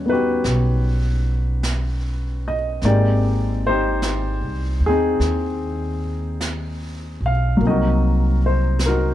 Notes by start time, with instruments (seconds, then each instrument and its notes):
Already playing: upright bass D#2, grand piano G3 B3 C#4 F#4 G4 C#5 D#5 F#5
0.06 grand piano B3 D#4 B4
0.12 grand piano F#4 G4
0.44 upright bass B1, brush sweep, snare
1.63 brush sweep, snare, hi-hat pedal
2.48 grand piano D#5
2.82 upright bass G#1, grand piano G#3 A#3 C4 D5, brush sweep, snare
2.86 grand piano D#4 G4
3.67 grand piano D#4 G4 C5
4.02 brush sweep, snare, hi-hat pedal
4.41 upright bass C2
4.80 upright bass D#2
4.86 grand piano C4 D#4 G#4
5.20 upright bass D#2, brush sweep, snare
6.41 brush sweep, snare, hi-hat pedal
7.20 upright bass B1
7.26 grand piano F5
7.57 upright bass C2, grand piano F#3, brush sweep
7.61 grand piano A#3 C4
7.67 grand piano D#4 F#4 A#4 D#5
8.46 grand piano C5
8.79 brush sweep, snare, hi-hat pedal
8.86 grand piano D#4 F#4 A#4